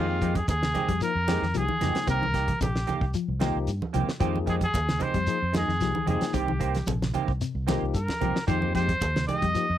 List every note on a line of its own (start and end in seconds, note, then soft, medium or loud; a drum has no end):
0.00 0.41 F2 medium
0.00 0.14 D#3 medium
0.00 0.33 F3 medium
0.00 0.33 A#3 medium
0.00 0.33 D#4 medium
0.00 0.37 F4 medium
0.00 0.33 G#4 medium
0.09 0.20 G#3 soft
0.09 0.21 C4 soft
0.09 0.21 G4 soft
0.21 0.38 D#3 medium
0.21 0.41 F3 medium
0.21 0.38 G#3 medium
0.21 0.38 C4 medium
0.21 0.39 G4 medium
0.21 kick medium
0.21 closed hi-hat medium
0.21 shekere soft
0.35 0.48 G#4 medium
0.35 kick medium
0.35 closed hi-hat medium
0.35 high conga medium
0.48 0.71 D#2 medium
0.48 0.98 G#4 medium
0.48 kick medium
0.48 closed hi-hat medium
0.48 high conga medium
0.48 shekere medium
0.63 snare medium
0.63 low conga medium
0.74 0.91 D#3 medium
0.74 0.91 G#3 medium
0.74 0.91 C4 medium
0.74 0.91 G4 medium
0.74 closed hi-hat medium
0.74 high conga medium
0.74 low conga medium
0.74 shekere soft
0.89 1.00 F2 medium
0.89 0.98 G3 medium
0.89 kick medium
0.89 closed hi-hat medium
1.01 1.11 F3 medium
1.01 1.20 F3 medium
1.01 1.11 A#3 medium
1.01 1.11 D#4 medium
1.01 1.12 A#4 medium
1.01 1.59 A#4 medium
1.01 closed hi-hat medium
1.01 shekere medium
1.15 1.39 F2 medium
1.27 1.44 D#3 medium
1.27 1.38 F3 medium
1.27 1.44 G#3 medium
1.27 1.38 A#3 medium
1.27 1.44 C4 medium
1.27 1.38 D#4 medium
1.27 1.45 G4 medium
1.27 1.38 G#4 medium
1.27 snare medium
1.27 closed hi-hat medium
1.27 high conga medium
1.27 shekere soft
1.42 1.53 F2 medium
1.42 1.51 D#3 medium
1.42 snare soft
1.54 1.67 C2 medium
1.54 1.64 F3 medium
1.54 1.65 A#3 medium
1.54 1.65 D#4 medium
1.54 1.65 G4 medium
1.54 2.09 G#4 loud
1.54 closed hi-hat medium
1.54 shekere medium
1.69 1.87 D#3 medium
1.69 muted fingered electric bass stroke soft
1.69 high conga medium
1.81 1.93 F2 medium
1.81 1.98 D#3 medium
1.81 2.08 F3 medium
1.81 1.98 G#3 medium
1.81 2.08 A#3 medium
1.81 2.09 D#4 medium
1.81 1.98 G4 medium
1.81 2.09 G#4 medium
1.81 muted clean electric guitar stroke medium
1.81 snare soft
1.81 closed hi-hat medium
1.81 high conga medium
1.81 low conga medium
1.81 shekere soft
1.95 muted fingered electric bass stroke soft
1.95 snare medium
1.95 closed hi-hat soft
2.07 2.54 C2 loud
2.07 2.18 C3 loud
2.07 2.24 D#3 medium
2.07 2.24 A#3 medium
2.07 2.24 C4 medium
2.07 2.24 G4 medium
2.07 2.59 A#4 loud
2.07 kick medium
2.07 closed hi-hat medium
2.07 shekere medium
2.22 2.40 D#3 medium
2.22 high conga medium
2.34 2.51 D#3 soft
2.34 2.51 A#3 medium
2.34 2.51 G4 medium
2.34 kick medium
2.34 snare soft
2.34 closed hi-hat medium
2.34 shekere soft
2.48 kick medium
2.48 closed hi-hat medium
2.48 high conga medium
2.61 2.84 A#1 medium
2.61 2.80 C3 medium
2.61 3.11 G4 medium
2.61 kick medium
2.61 closed hi-hat medium
2.61 high conga medium
2.61 shekere medium
2.76 snare medium
2.87 3.04 D#3 medium
2.87 3.04 A#3 medium
2.87 3.04 G4 medium
2.87 muted clean electric guitar stroke medium
2.87 closed hi-hat soft
2.87 high conga medium
2.87 low conga medium
2.87 shekere soft
3.01 3.13 C2 medium
3.01 kick medium
3.14 3.34 F3 medium
3.14 closed hi-hat medium
3.14 shekere medium
3.28 3.52 C2 medium
3.40 3.57 D#3 medium
3.40 3.60 D#3 medium
3.40 3.69 F3 medium
3.40 3.57 A#3 medium
3.40 3.69 A#3 medium
3.40 3.57 C4 medium
3.40 3.70 D#4 medium
3.40 3.58 G4 medium
3.40 3.70 G4 medium
3.40 snare medium
3.40 closed hi-hat soft
3.40 high conga medium
3.40 shekere soft
3.55 3.66 C2 medium
3.67 3.80 G2 medium
3.67 closed hi-hat medium
3.67 shekere medium
3.82 muted fingered electric bass stroke soft
3.82 high conga medium
3.93 4.06 C2 medium
3.93 4.10 D#3 medium
3.93 4.14 F3 medium
3.93 4.10 A#3 medium
3.93 4.11 C4 medium
3.93 4.11 G4 medium
3.93 closed hi-hat soft
3.93 low conga medium
3.93 shekere soft
4.09 snare medium
4.20 4.67 F2 loud
4.20 4.37 D#3 medium
4.20 4.40 D#3 medium
4.20 4.58 F3 medium
4.20 4.37 G#3 medium
4.20 4.59 A#3 medium
4.20 4.37 C4 medium
4.20 4.59 D#4 medium
4.20 4.37 G4 medium
4.20 4.59 G#4 medium
4.20 kick medium
4.20 closed hi-hat medium
4.20 shekere medium
4.36 high conga medium
4.46 4.63 D#3 medium
4.46 4.66 F3 medium
4.46 4.64 G#3 medium
4.46 4.64 C4 medium
4.46 4.64 G4 medium
4.46 4.55 G#4 medium
4.46 kick medium
4.46 closed hi-hat soft
4.46 shekere soft
4.61 5.04 G#4 loud
4.61 kick medium
4.61 closed hi-hat medium
4.61 high conga medium
4.74 4.98 D#2 medium
4.74 kick medium
4.74 closed hi-hat medium
4.74 high conga medium
4.74 shekere medium
4.89 snare medium
4.89 low conga medium
4.99 5.16 D#3 medium
4.99 5.17 G#3 medium
4.99 5.17 C4 medium
4.99 5.17 G4 medium
4.99 5.55 C5 loud
4.99 closed hi-hat soft
4.99 high conga medium
4.99 low conga medium
4.99 shekere soft
5.14 5.26 F2 medium
5.14 5.24 G3 medium
5.14 kick medium
5.14 closed hi-hat medium
5.27 5.46 F3 medium
5.27 5.38 F3 medium
5.27 5.38 A#3 medium
5.27 5.38 D#4 medium
5.27 5.38 G#4 medium
5.27 closed hi-hat medium
5.27 shekere medium
5.42 5.65 F2 medium
5.53 5.70 D#3 medium
5.53 5.64 F3 medium
5.53 5.70 G#3 medium
5.53 5.65 A#3 medium
5.53 5.65 D#4 medium
5.53 5.65 G#4 medium
5.53 muted clean electric guitar stroke medium
5.53 snare medium
5.53 closed hi-hat medium
5.53 high conga medium
5.53 shekere soft
5.57 6.05 G#4 medium
5.68 5.79 F2 medium
5.68 5.77 D#3 medium
5.68 snare soft
5.80 5.93 C2 medium
5.80 5.91 F3 medium
5.80 5.91 A#3 medium
5.80 5.91 D#4 medium
5.80 5.91 G4 medium
5.80 snare soft
5.80 closed hi-hat medium
5.80 shekere medium
5.94 6.14 D#3 medium
5.94 muted fingered electric bass stroke soft
5.94 high conga medium
6.06 6.19 F2 medium
6.06 6.23 D#3 medium
6.06 6.35 F3 medium
6.06 6.24 G#3 medium
6.06 6.35 A#3 medium
6.06 6.24 C4 medium
6.06 6.35 D#4 medium
6.06 6.24 G4 medium
6.06 6.36 G#4 medium
6.06 6.35 G#4 medium
6.06 closed hi-hat medium
6.06 high conga medium
6.06 low conga medium
6.06 shekere soft
6.21 muted fingered electric bass stroke soft
6.21 snare medium
6.21 closed hi-hat medium
6.33 6.80 C2 loud
6.33 6.44 C3 medium
6.33 6.50 D#3 medium
6.33 6.51 C4 medium
6.33 6.51 G4 medium
6.33 6.88 G4 medium
6.33 muted clean electric guitar stroke medium
6.33 kick medium
6.33 closed hi-hat medium
6.33 shekere medium
6.48 6.67 D#3 medium
6.48 high conga medium
6.59 6.77 D#3 medium
6.59 6.77 A#3 medium
6.59 6.77 C4 medium
6.59 6.77 G4 medium
6.59 kick medium
6.59 closed hi-hat medium
6.59 shekere soft
6.75 snare soft
6.75 closed hi-hat medium
6.75 high conga medium
6.87 7.11 A#1 medium
6.87 7.07 C3 medium
6.87 kick medium
6.87 closed hi-hat medium
6.87 high conga medium
6.87 shekere medium
7.02 snare medium
7.02 low conga medium
7.14 7.30 D#3 medium
7.14 7.31 A#3 medium
7.14 7.31 C4 medium
7.14 7.31 G4 medium
7.14 closed hi-hat medium
7.14 high conga medium
7.14 low conga medium
7.14 shekere soft
7.28 7.39 C2 medium
7.28 kick medium
7.41 7.60 C3 medium
7.41 closed hi-hat medium
7.41 shekere medium
7.55 7.78 C2 medium
7.67 7.84 D#3 medium
7.67 7.87 D#3 medium
7.67 7.96 F3 medium
7.67 7.84 A#3 medium
7.67 7.96 A#3 medium
7.67 7.84 C4 medium
7.67 7.97 D#4 medium
7.67 7.84 G4 medium
7.67 7.97 G4 medium
7.67 snare medium
7.67 closed hi-hat medium
7.67 high conga medium
7.67 shekere soft
7.82 7.93 C2 medium
7.94 8.07 G2 medium
7.94 8.45 A#4 medium
7.94 kick medium
7.94 closed hi-hat medium
7.94 shekere medium
8.08 muted fingered electric bass stroke soft
8.08 snare medium
8.08 high conga medium
8.21 8.34 C2 medium
8.21 8.37 D#3 medium
8.21 8.40 F3 medium
8.21 8.37 A#3 medium
8.21 8.38 C4 medium
8.21 8.38 G4 medium
8.21 closed hi-hat soft
8.21 high conga medium
8.21 low conga medium
8.21 shekere soft
8.36 muted fingered electric bass stroke soft
8.36 snare medium
8.47 8.94 F2 loud
8.47 8.61 D#3 medium
8.47 8.66 D#3 medium
8.47 8.86 F3 medium
8.47 8.61 G#3 medium
8.47 8.86 A#3 medium
8.47 8.60 C4 medium
8.47 8.86 D#4 medium
8.47 8.60 G4 medium
8.47 8.86 G4 medium
8.47 8.72 C5 medium
8.47 kick medium
8.47 closed hi-hat medium
8.47 shekere medium
8.61 8.74 G#3 soft
8.61 8.74 C4 soft
8.61 8.74 G4 soft
8.61 high conga medium
8.75 8.94 F3 medium
8.75 8.91 G#3 medium
8.75 8.91 C4 medium
8.75 8.91 G4 medium
8.75 9.24 C5 medium
8.75 kick medium
8.75 snare soft
8.75 closed hi-hat soft
8.75 shekere soft
8.89 kick medium
8.89 closed hi-hat medium
8.89 high conga medium
9.01 9.24 D#2 medium
9.01 kick medium
9.01 closed hi-hat medium
9.01 high conga medium
9.01 shekere medium
9.16 snare medium
9.16 low conga medium
9.27 9.44 D#3 medium
9.27 9.45 G#3 medium
9.27 9.45 G4 medium
9.27 9.78 D#5 loud
9.27 closed hi-hat medium
9.27 high conga medium
9.27 low conga medium
9.27 shekere soft
9.42 9.53 F2 medium
9.42 9.51 G3 medium
9.42 kick medium
9.42 closed hi-hat medium
9.55 9.73 F3 medium
9.55 9.65 F3 medium
9.55 9.65 A#3 medium
9.55 9.65 D#4 medium
9.55 9.65 G4 medium
9.55 closed hi-hat medium
9.55 shekere medium
9.70 9.78 F2 medium